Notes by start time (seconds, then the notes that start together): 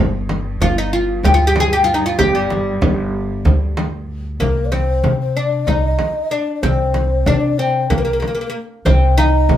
Already playing: G1 G2 D4
0.29 frame drum
0.60 G1 F4, frame drum
0.78 D#4
0.93 F4
1.23 D2 G4, frame drum
1.34 F4
1.47 G4
1.56 frame drum
1.60 G#4
1.73 G4
1.84 F4
1.94 D#4
2.06 F4
2.18 G1 G4, frame drum
2.35 G3
2.50 frame drum
2.81 G1, frame drum
3.45 D2, frame drum
3.77 frame drum
4.40 C2 A#3 A#4, frame drum
4.65 D5
4.72 C4 C5, frame drum
5.03 C3, frame drum
5.20 C5
5.36 D4 D5
5.67 C2 D#4 D#5, frame drum
5.99 frame drum
6.31 D4 D5
6.55 D5
6.62 C2 C4 C5, frame drum
6.94 frame drum
7.26 C3 D4 D5, frame drum
7.34 C5
7.41 D5
7.58 C4 C5
7.90 C2 A#3 A#4, frame drum
7.98 A#3
8.05 A#3
8.13 A#3
8.20 A#3, frame drum
8.28 A#3
8.35 A#3
8.41 A#3
8.46 A#3 A#4
8.85 C2 C4 D5, frame drum
8.89 C5
9.18 D#4 F5, frame drum
9.22 D#5
9.49 C3, frame drum